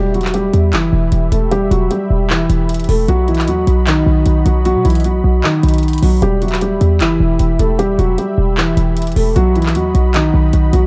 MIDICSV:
0, 0, Header, 1, 5, 480
1, 0, Start_track
1, 0, Key_signature, 1, "minor"
1, 0, Tempo, 392157
1, 1856, Time_signature, 4, 2, 24, 8
1, 13301, End_track
2, 0, Start_track
2, 0, Title_t, "Analog synth pad"
2, 0, Program_c, 0, 89
2, 0, Note_on_c, 0, 67, 83
2, 0, Note_on_c, 0, 76, 75
2, 0, Note_on_c, 0, 83, 91
2, 3737, Note_off_c, 0, 67, 0
2, 3737, Note_off_c, 0, 76, 0
2, 3775, Note_on_c, 0, 66, 83
2, 3776, Note_on_c, 0, 75, 76
2, 7577, Note_off_c, 0, 66, 0
2, 7577, Note_off_c, 0, 75, 0
2, 7615, Note_on_c, 0, 67, 82
2, 7615, Note_on_c, 0, 76, 74
2, 11406, Note_off_c, 0, 83, 0
2, 11416, Note_off_c, 0, 67, 0
2, 11417, Note_off_c, 0, 76, 0
2, 11454, Note_on_c, 0, 75, 73
2, 11455, Note_on_c, 0, 66, 81
2, 11455, Note_on_c, 0, 83, 94
2, 13301, Note_off_c, 0, 66, 0
2, 13301, Note_off_c, 0, 75, 0
2, 13301, Note_off_c, 0, 83, 0
2, 13301, End_track
3, 0, Start_track
3, 0, Title_t, "Felt piano"
3, 0, Program_c, 1, 0
3, 0, Note_on_c, 1, 55, 82
3, 0, Note_on_c, 1, 67, 113
3, 143, Note_off_c, 1, 67, 0
3, 149, Note_off_c, 1, 55, 0
3, 176, Note_on_c, 1, 66, 79
3, 185, Note_on_c, 1, 54, 68
3, 384, Note_off_c, 1, 66, 0
3, 389, Note_off_c, 1, 54, 0
3, 416, Note_on_c, 1, 67, 87
3, 425, Note_on_c, 1, 55, 64
3, 867, Note_off_c, 1, 67, 0
3, 872, Note_off_c, 1, 55, 0
3, 894, Note_on_c, 1, 64, 84
3, 904, Note_on_c, 1, 52, 64
3, 1571, Note_off_c, 1, 64, 0
3, 1577, Note_off_c, 1, 52, 0
3, 1613, Note_on_c, 1, 69, 82
3, 1623, Note_on_c, 1, 57, 67
3, 1822, Note_off_c, 1, 69, 0
3, 1828, Note_off_c, 1, 57, 0
3, 1854, Note_on_c, 1, 67, 114
3, 1864, Note_on_c, 1, 55, 83
3, 2063, Note_off_c, 1, 67, 0
3, 2068, Note_off_c, 1, 55, 0
3, 2090, Note_on_c, 1, 66, 90
3, 2100, Note_on_c, 1, 54, 69
3, 2301, Note_off_c, 1, 66, 0
3, 2306, Note_off_c, 1, 54, 0
3, 2333, Note_on_c, 1, 67, 76
3, 2343, Note_on_c, 1, 55, 62
3, 2785, Note_off_c, 1, 67, 0
3, 2791, Note_off_c, 1, 55, 0
3, 2814, Note_on_c, 1, 64, 75
3, 2824, Note_on_c, 1, 52, 66
3, 3491, Note_off_c, 1, 64, 0
3, 3496, Note_off_c, 1, 52, 0
3, 3536, Note_on_c, 1, 69, 85
3, 3545, Note_on_c, 1, 57, 65
3, 3744, Note_off_c, 1, 69, 0
3, 3749, Note_off_c, 1, 57, 0
3, 3777, Note_on_c, 1, 66, 115
3, 3786, Note_on_c, 1, 54, 85
3, 3984, Note_off_c, 1, 66, 0
3, 3990, Note_off_c, 1, 54, 0
3, 4018, Note_on_c, 1, 64, 85
3, 4027, Note_on_c, 1, 52, 72
3, 4225, Note_off_c, 1, 64, 0
3, 4231, Note_off_c, 1, 52, 0
3, 4260, Note_on_c, 1, 66, 80
3, 4270, Note_on_c, 1, 54, 61
3, 4709, Note_off_c, 1, 66, 0
3, 4714, Note_off_c, 1, 54, 0
3, 4736, Note_on_c, 1, 63, 93
3, 4745, Note_on_c, 1, 51, 65
3, 5412, Note_off_c, 1, 63, 0
3, 5417, Note_off_c, 1, 51, 0
3, 5456, Note_on_c, 1, 66, 83
3, 5466, Note_on_c, 1, 54, 63
3, 5664, Note_off_c, 1, 66, 0
3, 5670, Note_off_c, 1, 54, 0
3, 5695, Note_on_c, 1, 66, 118
3, 5705, Note_on_c, 1, 54, 84
3, 5904, Note_off_c, 1, 66, 0
3, 5909, Note_off_c, 1, 54, 0
3, 5934, Note_on_c, 1, 64, 90
3, 5944, Note_on_c, 1, 52, 69
3, 6143, Note_off_c, 1, 64, 0
3, 6148, Note_off_c, 1, 52, 0
3, 6177, Note_on_c, 1, 66, 81
3, 6186, Note_on_c, 1, 54, 61
3, 6627, Note_off_c, 1, 66, 0
3, 6632, Note_off_c, 1, 54, 0
3, 6655, Note_on_c, 1, 63, 80
3, 6665, Note_on_c, 1, 51, 66
3, 7332, Note_off_c, 1, 63, 0
3, 7337, Note_off_c, 1, 51, 0
3, 7380, Note_on_c, 1, 66, 74
3, 7390, Note_on_c, 1, 54, 67
3, 7586, Note_off_c, 1, 66, 0
3, 7592, Note_off_c, 1, 54, 0
3, 7615, Note_on_c, 1, 67, 112
3, 7625, Note_on_c, 1, 55, 84
3, 7824, Note_off_c, 1, 67, 0
3, 7829, Note_off_c, 1, 55, 0
3, 7855, Note_on_c, 1, 66, 81
3, 7865, Note_on_c, 1, 54, 67
3, 8063, Note_off_c, 1, 66, 0
3, 8069, Note_off_c, 1, 54, 0
3, 8095, Note_on_c, 1, 67, 84
3, 8105, Note_on_c, 1, 55, 60
3, 8546, Note_off_c, 1, 67, 0
3, 8552, Note_off_c, 1, 55, 0
3, 8575, Note_on_c, 1, 64, 84
3, 8584, Note_on_c, 1, 52, 65
3, 9252, Note_off_c, 1, 64, 0
3, 9257, Note_off_c, 1, 52, 0
3, 9293, Note_on_c, 1, 69, 82
3, 9302, Note_on_c, 1, 57, 66
3, 9502, Note_off_c, 1, 69, 0
3, 9508, Note_off_c, 1, 57, 0
3, 9533, Note_on_c, 1, 67, 113
3, 9543, Note_on_c, 1, 55, 82
3, 9743, Note_off_c, 1, 67, 0
3, 9748, Note_off_c, 1, 55, 0
3, 9771, Note_on_c, 1, 66, 95
3, 9780, Note_on_c, 1, 54, 68
3, 9981, Note_off_c, 1, 66, 0
3, 9986, Note_off_c, 1, 54, 0
3, 10013, Note_on_c, 1, 67, 79
3, 10023, Note_on_c, 1, 55, 60
3, 10465, Note_off_c, 1, 67, 0
3, 10471, Note_off_c, 1, 55, 0
3, 10494, Note_on_c, 1, 64, 77
3, 10503, Note_on_c, 1, 52, 63
3, 11171, Note_off_c, 1, 64, 0
3, 11176, Note_off_c, 1, 52, 0
3, 11214, Note_on_c, 1, 69, 86
3, 11223, Note_on_c, 1, 57, 63
3, 11423, Note_off_c, 1, 69, 0
3, 11428, Note_off_c, 1, 57, 0
3, 11454, Note_on_c, 1, 66, 118
3, 11464, Note_on_c, 1, 54, 88
3, 11663, Note_off_c, 1, 66, 0
3, 11669, Note_off_c, 1, 54, 0
3, 11697, Note_on_c, 1, 64, 85
3, 11707, Note_on_c, 1, 52, 71
3, 11905, Note_off_c, 1, 64, 0
3, 11910, Note_off_c, 1, 52, 0
3, 11939, Note_on_c, 1, 66, 82
3, 11949, Note_on_c, 1, 54, 62
3, 12388, Note_off_c, 1, 66, 0
3, 12394, Note_off_c, 1, 54, 0
3, 12415, Note_on_c, 1, 63, 93
3, 12425, Note_on_c, 1, 51, 65
3, 13092, Note_off_c, 1, 63, 0
3, 13097, Note_off_c, 1, 51, 0
3, 13137, Note_on_c, 1, 66, 82
3, 13147, Note_on_c, 1, 54, 63
3, 13301, Note_off_c, 1, 54, 0
3, 13301, Note_off_c, 1, 66, 0
3, 13301, End_track
4, 0, Start_track
4, 0, Title_t, "808-style bass"
4, 0, Program_c, 2, 38
4, 0, Note_on_c, 2, 28, 109
4, 626, Note_off_c, 2, 28, 0
4, 654, Note_on_c, 2, 40, 109
4, 895, Note_on_c, 2, 30, 101
4, 913, Note_off_c, 2, 40, 0
4, 1123, Note_off_c, 2, 30, 0
4, 1134, Note_on_c, 2, 28, 106
4, 1365, Note_off_c, 2, 28, 0
4, 1374, Note_on_c, 2, 28, 111
4, 1605, Note_off_c, 2, 28, 0
4, 1614, Note_on_c, 2, 28, 102
4, 2076, Note_off_c, 2, 28, 0
4, 2094, Note_on_c, 2, 28, 110
4, 2325, Note_off_c, 2, 28, 0
4, 2575, Note_on_c, 2, 28, 106
4, 3036, Note_off_c, 2, 28, 0
4, 3055, Note_on_c, 2, 28, 103
4, 3516, Note_off_c, 2, 28, 0
4, 3535, Note_on_c, 2, 28, 103
4, 3766, Note_off_c, 2, 28, 0
4, 3775, Note_on_c, 2, 35, 101
4, 4255, Note_on_c, 2, 39, 102
4, 4273, Note_off_c, 2, 35, 0
4, 4483, Note_off_c, 2, 39, 0
4, 4495, Note_on_c, 2, 35, 110
4, 4956, Note_off_c, 2, 35, 0
4, 4975, Note_on_c, 2, 35, 101
4, 5205, Note_off_c, 2, 35, 0
4, 5215, Note_on_c, 2, 35, 107
4, 5445, Note_off_c, 2, 35, 0
4, 5455, Note_on_c, 2, 35, 105
4, 5822, Note_on_c, 2, 47, 99
4, 5841, Note_off_c, 2, 35, 0
4, 5929, Note_off_c, 2, 47, 0
4, 5935, Note_on_c, 2, 35, 112
4, 6396, Note_off_c, 2, 35, 0
4, 6415, Note_on_c, 2, 35, 108
4, 6645, Note_off_c, 2, 35, 0
4, 6895, Note_on_c, 2, 35, 105
4, 7356, Note_off_c, 2, 35, 0
4, 7375, Note_on_c, 2, 35, 104
4, 7605, Note_off_c, 2, 35, 0
4, 7615, Note_on_c, 2, 28, 111
4, 8306, Note_off_c, 2, 28, 0
4, 8335, Note_on_c, 2, 40, 108
4, 8576, Note_on_c, 2, 30, 102
4, 8594, Note_off_c, 2, 40, 0
4, 8803, Note_off_c, 2, 30, 0
4, 8815, Note_on_c, 2, 28, 104
4, 9045, Note_off_c, 2, 28, 0
4, 9056, Note_on_c, 2, 28, 108
4, 9286, Note_off_c, 2, 28, 0
4, 9295, Note_on_c, 2, 28, 105
4, 9756, Note_off_c, 2, 28, 0
4, 9775, Note_on_c, 2, 28, 110
4, 10006, Note_off_c, 2, 28, 0
4, 10255, Note_on_c, 2, 28, 110
4, 10716, Note_off_c, 2, 28, 0
4, 10735, Note_on_c, 2, 28, 102
4, 11196, Note_off_c, 2, 28, 0
4, 11215, Note_on_c, 2, 28, 104
4, 11445, Note_off_c, 2, 28, 0
4, 11456, Note_on_c, 2, 35, 104
4, 11936, Note_on_c, 2, 39, 101
4, 11954, Note_off_c, 2, 35, 0
4, 12163, Note_off_c, 2, 39, 0
4, 12175, Note_on_c, 2, 35, 108
4, 12636, Note_off_c, 2, 35, 0
4, 12654, Note_on_c, 2, 35, 105
4, 12885, Note_off_c, 2, 35, 0
4, 12895, Note_on_c, 2, 35, 109
4, 13125, Note_off_c, 2, 35, 0
4, 13135, Note_on_c, 2, 35, 108
4, 13301, Note_off_c, 2, 35, 0
4, 13301, End_track
5, 0, Start_track
5, 0, Title_t, "Drums"
5, 176, Note_on_c, 9, 42, 44
5, 256, Note_off_c, 9, 42, 0
5, 256, Note_on_c, 9, 42, 56
5, 302, Note_on_c, 9, 39, 66
5, 335, Note_off_c, 9, 42, 0
5, 335, Note_on_c, 9, 42, 74
5, 414, Note_off_c, 9, 42, 0
5, 414, Note_on_c, 9, 42, 80
5, 425, Note_off_c, 9, 39, 0
5, 537, Note_off_c, 9, 42, 0
5, 654, Note_on_c, 9, 42, 74
5, 777, Note_off_c, 9, 42, 0
5, 894, Note_on_c, 9, 42, 86
5, 895, Note_on_c, 9, 39, 115
5, 1017, Note_off_c, 9, 42, 0
5, 1018, Note_off_c, 9, 39, 0
5, 1369, Note_on_c, 9, 42, 84
5, 1492, Note_off_c, 9, 42, 0
5, 1615, Note_on_c, 9, 42, 97
5, 1737, Note_off_c, 9, 42, 0
5, 1854, Note_on_c, 9, 42, 71
5, 1976, Note_off_c, 9, 42, 0
5, 2098, Note_on_c, 9, 42, 73
5, 2220, Note_off_c, 9, 42, 0
5, 2334, Note_on_c, 9, 42, 76
5, 2456, Note_off_c, 9, 42, 0
5, 2816, Note_on_c, 9, 39, 120
5, 2938, Note_off_c, 9, 39, 0
5, 3055, Note_on_c, 9, 42, 87
5, 3177, Note_off_c, 9, 42, 0
5, 3295, Note_on_c, 9, 42, 89
5, 3358, Note_off_c, 9, 42, 0
5, 3358, Note_on_c, 9, 42, 74
5, 3422, Note_off_c, 9, 42, 0
5, 3422, Note_on_c, 9, 42, 62
5, 3478, Note_off_c, 9, 42, 0
5, 3478, Note_on_c, 9, 42, 51
5, 3535, Note_on_c, 9, 46, 95
5, 3601, Note_off_c, 9, 42, 0
5, 3658, Note_off_c, 9, 46, 0
5, 3775, Note_on_c, 9, 42, 72
5, 3897, Note_off_c, 9, 42, 0
5, 4015, Note_on_c, 9, 42, 43
5, 4095, Note_off_c, 9, 42, 0
5, 4095, Note_on_c, 9, 42, 57
5, 4142, Note_on_c, 9, 39, 65
5, 4175, Note_off_c, 9, 42, 0
5, 4175, Note_on_c, 9, 42, 71
5, 4254, Note_off_c, 9, 42, 0
5, 4254, Note_on_c, 9, 42, 77
5, 4264, Note_off_c, 9, 39, 0
5, 4377, Note_off_c, 9, 42, 0
5, 4495, Note_on_c, 9, 42, 77
5, 4618, Note_off_c, 9, 42, 0
5, 4735, Note_on_c, 9, 42, 82
5, 4736, Note_on_c, 9, 39, 111
5, 4857, Note_off_c, 9, 42, 0
5, 4858, Note_off_c, 9, 39, 0
5, 5210, Note_on_c, 9, 42, 85
5, 5332, Note_off_c, 9, 42, 0
5, 5456, Note_on_c, 9, 42, 94
5, 5578, Note_off_c, 9, 42, 0
5, 5695, Note_on_c, 9, 42, 73
5, 5818, Note_off_c, 9, 42, 0
5, 5935, Note_on_c, 9, 42, 70
5, 5998, Note_off_c, 9, 42, 0
5, 5998, Note_on_c, 9, 42, 61
5, 6062, Note_off_c, 9, 42, 0
5, 6062, Note_on_c, 9, 42, 51
5, 6118, Note_off_c, 9, 42, 0
5, 6118, Note_on_c, 9, 42, 42
5, 6174, Note_off_c, 9, 42, 0
5, 6174, Note_on_c, 9, 42, 80
5, 6296, Note_off_c, 9, 42, 0
5, 6655, Note_on_c, 9, 39, 113
5, 6778, Note_off_c, 9, 39, 0
5, 6895, Note_on_c, 9, 42, 78
5, 6958, Note_off_c, 9, 42, 0
5, 6958, Note_on_c, 9, 42, 75
5, 7022, Note_off_c, 9, 42, 0
5, 7022, Note_on_c, 9, 42, 72
5, 7079, Note_off_c, 9, 42, 0
5, 7079, Note_on_c, 9, 42, 73
5, 7135, Note_off_c, 9, 42, 0
5, 7135, Note_on_c, 9, 42, 52
5, 7199, Note_off_c, 9, 42, 0
5, 7199, Note_on_c, 9, 42, 63
5, 7262, Note_off_c, 9, 42, 0
5, 7262, Note_on_c, 9, 42, 76
5, 7319, Note_off_c, 9, 42, 0
5, 7319, Note_on_c, 9, 42, 87
5, 7375, Note_on_c, 9, 46, 98
5, 7441, Note_off_c, 9, 42, 0
5, 7498, Note_off_c, 9, 46, 0
5, 7615, Note_on_c, 9, 42, 72
5, 7737, Note_off_c, 9, 42, 0
5, 7855, Note_on_c, 9, 42, 43
5, 7935, Note_off_c, 9, 42, 0
5, 7935, Note_on_c, 9, 42, 56
5, 7982, Note_on_c, 9, 39, 66
5, 8015, Note_off_c, 9, 42, 0
5, 8015, Note_on_c, 9, 42, 69
5, 8095, Note_off_c, 9, 42, 0
5, 8095, Note_on_c, 9, 42, 78
5, 8105, Note_off_c, 9, 39, 0
5, 8217, Note_off_c, 9, 42, 0
5, 8335, Note_on_c, 9, 42, 73
5, 8457, Note_off_c, 9, 42, 0
5, 8575, Note_on_c, 9, 42, 87
5, 8576, Note_on_c, 9, 39, 114
5, 8697, Note_off_c, 9, 42, 0
5, 8698, Note_off_c, 9, 39, 0
5, 9049, Note_on_c, 9, 42, 84
5, 9172, Note_off_c, 9, 42, 0
5, 9295, Note_on_c, 9, 42, 95
5, 9418, Note_off_c, 9, 42, 0
5, 9535, Note_on_c, 9, 42, 74
5, 9657, Note_off_c, 9, 42, 0
5, 9778, Note_on_c, 9, 42, 69
5, 9900, Note_off_c, 9, 42, 0
5, 10014, Note_on_c, 9, 42, 78
5, 10137, Note_off_c, 9, 42, 0
5, 10496, Note_on_c, 9, 39, 116
5, 10618, Note_off_c, 9, 39, 0
5, 10736, Note_on_c, 9, 42, 89
5, 10858, Note_off_c, 9, 42, 0
5, 10975, Note_on_c, 9, 42, 87
5, 11039, Note_off_c, 9, 42, 0
5, 11039, Note_on_c, 9, 42, 72
5, 11102, Note_off_c, 9, 42, 0
5, 11102, Note_on_c, 9, 42, 63
5, 11159, Note_off_c, 9, 42, 0
5, 11159, Note_on_c, 9, 42, 51
5, 11216, Note_on_c, 9, 46, 93
5, 11282, Note_off_c, 9, 42, 0
5, 11338, Note_off_c, 9, 46, 0
5, 11455, Note_on_c, 9, 42, 71
5, 11578, Note_off_c, 9, 42, 0
5, 11695, Note_on_c, 9, 42, 44
5, 11775, Note_off_c, 9, 42, 0
5, 11775, Note_on_c, 9, 42, 59
5, 11822, Note_on_c, 9, 39, 66
5, 11855, Note_off_c, 9, 42, 0
5, 11855, Note_on_c, 9, 42, 73
5, 11935, Note_off_c, 9, 42, 0
5, 11935, Note_on_c, 9, 42, 78
5, 11945, Note_off_c, 9, 39, 0
5, 12057, Note_off_c, 9, 42, 0
5, 12176, Note_on_c, 9, 42, 74
5, 12298, Note_off_c, 9, 42, 0
5, 12415, Note_on_c, 9, 42, 84
5, 12416, Note_on_c, 9, 39, 116
5, 12538, Note_off_c, 9, 42, 0
5, 12539, Note_off_c, 9, 39, 0
5, 12890, Note_on_c, 9, 42, 81
5, 13013, Note_off_c, 9, 42, 0
5, 13136, Note_on_c, 9, 42, 95
5, 13258, Note_off_c, 9, 42, 0
5, 13301, End_track
0, 0, End_of_file